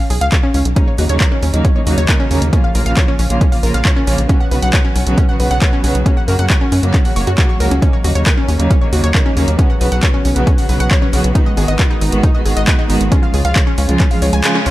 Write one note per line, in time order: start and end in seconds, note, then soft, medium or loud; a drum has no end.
0.10 0.19 B1 loud
0.10 0.17 G#4 medium
0.10 open hi-hat loud
0.21 0.30 C#2 medium
0.21 0.26 F5 loud
0.21 closed hi-hat medium
0.32 0.39 C#5 medium
0.32 kick loud
0.32 clap loud
0.32 closed hi-hat medium
0.43 0.48 C#4 loud
0.54 0.63 C#2 medium
0.54 0.59 C#4 medium
0.54 open hi-hat loud
0.65 0.74 B1 medium
0.65 closed hi-hat medium
0.76 0.92 C#3 medium
0.76 0.92 F#3 medium
0.76 0.92 A#3 medium
0.76 0.79 C#4 loud
0.76 0.92 D#4 medium
0.76 kick loud
0.76 closed hi-hat medium
0.88 0.94 C#5 medium
0.98 1.07 D#2 loud
0.98 1.06 C#3 medium
0.98 1.06 F#3 medium
0.98 1.06 A#3 medium
0.98 1.06 D#4 medium
0.98 1.05 F#4 medium
0.98 open hi-hat loud
1.09 1.18 D#2 medium
1.09 1.25 C#3 medium
1.09 1.25 F#3 medium
1.09 1.25 A#3 medium
1.09 1.25 D#4 medium
1.09 1.14 C#5 loud
1.09 closed hi-hat medium
1.20 1.27 A#4 medium
1.20 kick loud
1.20 clap loud
1.20 closed hi-hat medium
1.32 1.36 C#4 loud
1.42 1.51 D#2 medium
1.42 1.47 C#4 medium
1.42 open hi-hat loud
1.53 1.63 D#2 medium
1.53 1.69 C#3 medium
1.53 1.69 F#3 medium
1.53 1.69 A#3 loud
1.53 1.69 D#4 medium
1.53 closed hi-hat medium
1.65 1.67 C#4 loud
1.65 kick loud
1.65 closed hi-hat medium
1.76 1.83 C#3 medium
1.76 1.83 F#3 medium
1.76 1.83 A#3 medium
1.76 1.83 D#4 medium
1.76 1.82 C#5 medium
1.86 1.96 D#2 loud
1.86 2.02 C#3 medium
1.86 2.02 F#3 medium
1.86 2.02 A#3 medium
1.86 2.02 D#4 medium
1.86 1.93 F#4 medium
1.86 open hi-hat loud
1.98 2.07 D#2 medium
1.98 2.02 C#5 loud
1.98 closed hi-hat medium
2.09 2.24 C#3 medium
2.09 2.24 F#3 medium
2.09 2.24 A#3 medium
2.09 2.24 D#4 medium
2.09 2.16 A#4 medium
2.09 kick loud
2.09 clap loud
2.09 closed hi-hat medium
2.20 2.24 C#4 loud
2.31 2.40 D#2 medium
2.31 2.46 C#3 medium
2.31 2.46 F#3 medium
2.31 2.46 A#3 medium
2.31 2.35 C#4 medium
2.31 2.46 D#4 medium
2.31 open hi-hat loud
2.42 2.51 D#2 medium
2.42 closed hi-hat medium
2.53 2.68 C#3 medium
2.53 2.68 F3 medium
2.53 2.68 A#3 medium
2.53 2.56 C#4 loud
2.53 2.68 F4 medium
2.53 kick loud
2.53 closed hi-hat medium
2.64 2.71 F5 medium
2.75 2.84 A#1 medium
2.75 2.83 C#3 medium
2.75 2.83 F3 medium
2.75 2.83 A#3 medium
2.75 2.83 F4 medium
2.75 2.82 A#4 medium
2.75 open hi-hat loud
2.86 2.95 A#1 medium
2.86 3.01 C#3 medium
2.86 3.01 F3 medium
2.86 3.01 A#3 medium
2.86 3.01 F4 medium
2.86 2.90 F5 loud
2.86 closed hi-hat medium
2.97 3.04 C#5 medium
2.97 kick loud
2.97 clap loud
2.97 closed hi-hat medium
3.08 3.13 C#4 loud
3.19 3.28 A#1 loud
3.19 3.24 C#4 medium
3.19 open hi-hat loud
3.30 3.39 A#1 medium
3.30 3.45 C#3 loud
3.30 3.45 F3 medium
3.30 3.45 A#3 loud
3.30 3.45 F4 medium
3.30 closed hi-hat medium
3.41 3.44 C#4 loud
3.41 kick loud
3.41 closed hi-hat medium
3.52 3.60 C#3 medium
3.52 3.60 F3 medium
3.52 3.60 A#3 medium
3.52 3.60 F4 medium
3.52 3.59 F5 medium
3.52 open hi-hat medium
3.63 3.72 A#1 loud
3.63 3.79 C#3 medium
3.63 3.79 F3 medium
3.63 3.79 A#3 medium
3.63 3.79 F4 medium
3.63 3.70 A#4 medium
3.63 open hi-hat loud
3.74 3.83 A#1 medium
3.74 3.79 F5 loud
3.74 closed hi-hat medium
3.85 4.01 C#3 medium
3.85 4.01 F3 medium
3.85 4.01 A#3 medium
3.85 4.01 F4 medium
3.85 3.92 C#5 medium
3.85 kick loud
3.85 clap loud
3.85 closed hi-hat medium
3.96 4.01 C#4 loud
4.07 4.16 A#1 medium
4.07 4.23 C#3 medium
4.07 4.23 F3 medium
4.07 4.23 A#3 medium
4.07 4.12 C#4 medium
4.07 4.23 F4 medium
4.07 open hi-hat loud
4.18 4.27 A#1 medium
4.18 closed hi-hat medium
4.29 4.45 C#3 medium
4.29 4.45 F#3 medium
4.29 4.45 B3 medium
4.29 4.32 C#4 loud
4.29 4.45 F#4 medium
4.29 kick loud
4.29 closed hi-hat medium
4.40 4.47 F#5 medium
4.51 4.60 B1 medium
4.51 4.59 C#3 medium
4.51 4.59 F#3 medium
4.51 4.59 B3 medium
4.51 4.59 F#4 medium
4.51 4.58 B4 medium
4.51 open hi-hat loud
4.62 4.71 B1 medium
4.62 4.78 C#3 medium
4.62 4.78 F#3 medium
4.62 4.78 B3 medium
4.62 4.78 F#4 medium
4.62 4.67 F#5 loud
4.62 closed hi-hat medium
4.73 4.80 C#5 medium
4.73 kick loud
4.73 clap loud
4.73 closed hi-hat medium
4.85 4.89 C#4 loud
4.95 5.04 B1 medium
4.95 5.00 C#4 medium
4.95 open hi-hat loud
5.06 5.15 B1 medium
5.06 5.22 C#3 medium
5.06 5.22 F#3 loud
5.06 5.22 B3 medium
5.06 5.22 F#4 medium
5.06 closed hi-hat medium
5.18 5.20 C#4 loud
5.18 kick loud
5.18 closed hi-hat medium
5.28 5.36 C#3 medium
5.28 5.36 F#3 medium
5.28 5.36 B3 medium
5.28 5.36 F#4 medium
5.28 5.35 F#5 medium
5.40 5.49 B1 loud
5.40 5.55 C#3 medium
5.40 5.55 F#3 medium
5.40 5.55 B3 medium
5.40 5.55 F#4 medium
5.40 5.46 B4 medium
5.40 open hi-hat loud
5.51 5.60 B1 medium
5.51 5.55 F#5 loud
5.51 closed hi-hat medium
5.62 5.77 C#3 medium
5.62 5.77 F#3 medium
5.62 5.77 B3 medium
5.62 5.77 F#4 medium
5.62 5.68 C#5 medium
5.62 kick loud
5.62 clap loud
5.62 closed hi-hat medium
5.73 5.77 C#4 loud
5.84 5.93 B1 medium
5.84 5.99 C#3 medium
5.84 5.99 F#3 medium
5.84 5.99 B3 medium
5.84 5.88 C#4 medium
5.84 5.99 F#4 medium
5.84 open hi-hat loud
5.95 6.04 B1 medium
5.95 closed hi-hat medium
6.06 6.21 C#3 medium
6.06 6.21 F#3 medium
6.06 6.21 A#3 medium
6.06 6.09 C#4 loud
6.06 6.21 F#4 medium
6.06 kick loud
6.06 closed hi-hat medium
6.17 6.24 F#5 medium
6.28 6.37 F#2 loud
6.28 6.36 C#3 medium
6.28 6.36 F#3 medium
6.28 6.36 A#3 medium
6.28 6.36 F#4 medium
6.28 6.35 A#4 medium
6.28 open hi-hat loud
6.39 6.48 F#2 medium
6.39 6.54 C#3 medium
6.39 6.54 F#3 medium
6.39 6.54 A#3 medium
6.39 6.54 F#4 medium
6.39 6.43 F#5 loud
6.39 closed hi-hat medium
6.50 6.57 C#5 medium
6.50 kick loud
6.50 clap loud
6.50 closed hi-hat medium
6.61 6.66 C#4 loud
6.72 6.81 F#2 loud
6.72 6.77 C#4 medium
6.72 open hi-hat loud
6.83 6.92 F#2 medium
6.83 6.99 C#3 medium
6.83 6.99 F#3 medium
6.83 6.99 A#3 medium
6.83 6.98 F#4 medium
6.83 closed hi-hat medium
6.94 6.97 C#4 loud
6.94 kick loud
6.94 clap medium
6.94 closed hi-hat medium
7.05 7.13 C#3 medium
7.05 7.13 F#3 medium
7.05 7.13 A#3 medium
7.05 7.13 F#4 medium
7.05 7.12 F#5 medium
7.05 open hi-hat medium
7.16 7.25 F#1 medium
7.16 7.32 C#3 medium
7.16 7.32 F#3 medium
7.16 7.32 A#3 medium
7.16 7.32 F#4 medium
7.16 7.23 C#5 loud
7.16 open hi-hat loud
7.27 7.36 F#2 medium
7.27 7.32 F#4 loud
7.27 closed hi-hat medium
7.38 7.54 C#3 medium
7.38 7.54 F#3 medium
7.38 7.54 A#3 medium
7.38 7.54 F#4 medium
7.38 7.45 F#4 medium
7.38 kick loud
7.38 clap loud
7.38 closed hi-hat medium
7.49 7.54 C#6 medium
7.60 7.69 C#2 medium
7.60 7.76 C#3 medium
7.60 7.76 F#3 medium
7.60 7.76 A#3 medium
7.60 7.76 F#4 medium
7.60 7.67 A#4 loud
7.60 open hi-hat loud
7.71 7.80 C#2 medium
7.71 7.76 C#4 medium
7.71 closed hi-hat medium
7.82 7.98 C#3 medium
7.82 7.98 F#3 medium
7.82 7.98 A#3 medium
7.82 7.85 C#4 loud
7.82 7.98 D#4 medium
7.82 kick loud
7.82 closed hi-hat medium
7.93 8.00 C#5 medium
8.04 8.13 D#2 loud
8.04 8.12 C#3 medium
8.04 8.12 F#3 medium
8.04 8.12 A#3 medium
8.04 8.12 D#4 medium
8.04 8.11 F#4 medium
8.04 open hi-hat loud
8.15 8.24 D#2 medium
8.15 8.31 C#3 medium
8.15 8.31 F#3 medium
8.15 8.31 A#3 medium
8.15 8.31 D#4 medium
8.15 8.20 C#5 medium
8.15 closed hi-hat medium
8.26 8.33 A#4 medium
8.26 kick loud
8.26 clap loud
8.26 closed hi-hat medium
8.37 8.42 C#4 loud
8.48 8.57 D#2 medium
8.48 8.53 C#4 medium
8.48 open hi-hat loud
8.59 8.68 D#2 medium
8.59 8.75 C#3 loud
8.59 8.75 F#3 medium
8.59 8.75 A#3 medium
8.59 8.75 D#4 medium
8.59 closed hi-hat medium
8.70 8.73 C#4 loud
8.70 kick loud
8.70 closed hi-hat medium
8.81 8.89 C#3 medium
8.81 8.89 F#3 medium
8.81 8.89 A#3 medium
8.81 8.89 D#4 medium
8.81 8.88 C#5 medium
8.92 9.01 D#2 loud
8.92 9.08 C#3 medium
8.92 9.08 F#3 medium
8.92 9.08 A#3 medium
8.92 9.08 D#4 medium
8.92 8.99 F#4 medium
8.92 open hi-hat loud
9.04 9.13 D#2 medium
9.04 9.08 C#5 loud
9.04 closed hi-hat medium
9.14 9.30 C#3 medium
9.14 9.30 F#3 medium
9.14 9.30 A#3 medium
9.14 9.30 D#4 medium
9.14 9.21 A#4 medium
9.14 kick loud
9.14 clap loud
9.14 closed hi-hat medium
9.26 9.30 C#4 loud
9.37 9.46 D#2 loud
9.37 9.52 C#3 medium
9.37 9.52 F#3 medium
9.37 9.52 A#3 medium
9.37 9.41 C#4 medium
9.37 9.52 D#4 medium
9.37 open hi-hat loud
9.48 9.57 D#2 medium
9.48 closed hi-hat medium
9.59 9.74 C#3 medium
9.59 9.74 F#3 medium
9.59 9.74 B3 medium
9.59 9.61 C#4 loud
9.59 9.74 F#4 medium
9.59 kick loud
9.59 closed hi-hat medium
9.70 9.77 F#5 medium
9.81 9.90 B1 loud
9.81 9.89 C#3 medium
9.81 9.89 F#3 medium
9.81 9.89 B3 medium
9.81 9.89 F#4 medium
9.81 9.88 B4 medium
9.81 open hi-hat loud
9.92 10.01 B1 medium
9.92 10.07 C#3 medium
9.92 10.07 F#3 medium
9.92 10.07 B3 medium
9.92 10.07 F#4 medium
9.92 9.96 F#5 loud
9.92 closed hi-hat medium
10.03 10.10 C#5 medium
10.03 kick loud
10.03 clap loud
10.03 closed hi-hat medium
10.14 10.18 C#4 loud
10.25 10.34 B1 medium
10.25 10.29 C#4 medium
10.25 open hi-hat loud
10.36 10.45 B1 medium
10.36 10.51 C#3 medium
10.36 10.51 F#3 medium
10.36 10.51 B3 medium
10.36 10.51 F#4 medium
10.36 closed hi-hat medium
10.47 10.50 C#4 loud
10.47 kick loud
10.47 closed hi-hat medium
10.58 10.66 C#3 medium
10.58 10.66 F#3 medium
10.58 10.66 B3 medium
10.58 10.66 F#4 medium
10.58 10.65 F#5 medium
10.58 open hi-hat medium
10.69 10.78 B1 loud
10.69 10.84 C#3 medium
10.69 10.84 F#3 medium
10.69 10.84 B3 medium
10.69 10.84 F#4 medium
10.69 10.76 B4 medium
10.69 open hi-hat loud
10.80 10.89 B1 medium
10.80 10.85 F#5 loud
10.80 closed hi-hat medium
10.91 11.06 C#3 medium
10.91 11.06 F#3 medium
10.91 11.06 B3 medium
10.91 11.06 F#4 medium
10.91 10.98 C#5 medium
10.91 kick loud
10.91 clap loud
10.91 closed hi-hat medium
11.02 11.07 C#4 loud
11.13 11.22 B1 medium
11.13 11.28 C#3 medium
11.13 11.28 F#3 medium
11.13 11.28 B3 medium
11.13 11.18 C#4 medium
11.13 11.28 F#4 medium
11.13 open hi-hat loud
11.24 11.33 B1 medium
11.24 closed hi-hat medium
11.35 11.51 D#3 medium
11.35 11.51 G#3 medium
11.35 11.51 B3 medium
11.35 11.38 D#4 loud
11.35 11.50 F#4 medium
11.35 kick loud
11.35 closed hi-hat medium
11.46 11.53 D#5 medium
11.57 11.66 G#1 loud
11.57 11.65 D#3 medium
11.57 11.65 G#3 medium
11.57 11.65 B3 medium
11.57 11.65 F#4 medium
11.57 11.64 G#4 medium
11.57 open hi-hat loud
11.68 11.77 G#1 medium
11.68 11.84 D#3 medium
11.68 11.84 G#3 medium
11.68 11.84 B3 medium
11.68 11.84 F#4 medium
11.68 11.73 D#5 loud
11.68 closed hi-hat medium
11.79 11.86 B4 medium
11.79 kick loud
11.79 clap loud
11.79 closed hi-hat medium
11.90 11.95 D#4 loud
12.01 12.10 G#1 medium
12.01 12.06 D#4 medium
12.01 open hi-hat loud
12.12 12.21 G#1 medium
12.12 12.28 D#3 medium
12.12 12.28 G#3 medium
12.12 12.28 B3 loud
12.12 12.28 F#4 loud
12.12 closed hi-hat medium
12.23 12.26 D#4 loud
12.23 kick loud
12.23 closed hi-hat medium
12.34 12.42 D#3 medium
12.34 12.42 G#3 medium
12.34 12.42 B3 medium
12.34 12.42 F#4 medium
12.34 12.41 D#5 medium
12.45 12.54 G#1 medium
12.45 12.61 D#3 medium
12.45 12.61 G#3 medium
12.45 12.61 B3 medium
12.45 12.61 F#4 medium
12.45 12.52 G#4 medium
12.45 open hi-hat loud
12.57 12.65 G#1 medium
12.57 12.61 D#5 loud
12.57 closed hi-hat medium
12.67 12.83 D#3 medium
12.67 12.83 G#3 medium
12.67 12.83 B3 medium
12.67 12.83 F#4 medium
12.67 12.74 B4 medium
12.67 kick loud
12.67 clap loud
12.67 closed hi-hat medium
12.79 12.83 D#4 loud
12.89 12.99 G#1 medium
12.89 13.05 D#3 medium
12.89 13.05 G#3 medium
12.89 13.05 B3 medium
12.89 12.94 D#4 medium
12.89 13.05 F#4 medium
12.89 open hi-hat loud
13.01 13.10 G#1 medium
13.01 closed hi-hat medium
13.12 13.27 C#3 medium
13.12 13.27 F3 medium
13.12 13.27 G#3 medium
13.12 13.14 C#4 loud
13.12 13.27 F4 medium
13.12 kick loud
13.12 closed hi-hat medium
13.23 13.29 F5 medium
13.34 13.43 C#2 loud
13.34 13.41 C#3 medium
13.34 13.42 F3 medium
13.34 13.42 G#3 medium
13.34 13.41 F4 medium
13.34 13.41 G#4 medium
13.34 open hi-hat loud
13.45 13.54 C#2 medium
13.45 13.60 C#3 medium
13.45 13.60 F3 medium
13.45 13.60 G#3 medium
13.45 13.60 F4 medium
13.45 13.49 F5 loud
13.45 closed hi-hat medium
13.56 13.63 C#5 medium
13.56 kick loud
13.56 clap loud
13.56 closed hi-hat medium
13.67 13.71 C#4 loud
13.78 13.87 C#2 loud
13.78 13.82 C#4 medium
13.78 open hi-hat loud
13.89 13.98 C#2 medium
13.89 14.04 C#3 medium
13.89 14.04 F3 loud
13.89 14.04 G#3 medium
13.89 14.04 F4 loud
13.89 closed hi-hat medium
14.00 14.03 C#4 loud
14.00 kick loud
14.00 clap medium
14.00 closed hi-hat medium
14.11 14.19 C#3 medium
14.11 14.19 F3 medium
14.11 14.19 G#3 medium
14.11 14.19 F4 medium
14.11 14.18 F5 medium
14.11 open hi-hat medium
14.22 14.31 C#2 loud
14.22 14.37 C#3 medium
14.22 14.37 F3 medium
14.22 14.37 G#3 medium
14.22 14.37 F4 medium
14.22 14.27 C#5 medium
14.22 open hi-hat loud
14.33 14.42 C#2 medium
14.33 14.40 G#5 loud
14.33 closed hi-hat medium
14.44 14.60 C#3 medium
14.44 14.60 F3 medium
14.44 14.59 G#3 medium
14.44 14.59 F4 medium
14.44 14.49 G#5 medium
14.44 clap loud
14.44 closed hi-hat medium
14.55 14.60 C#4 loud
14.66 14.71 C#2 medium
14.66 14.71 C#3 medium
14.66 14.71 F3 medium
14.66 14.71 G#3 medium
14.66 14.71 C#4 medium
14.66 14.71 F4 medium
14.66 open hi-hat loud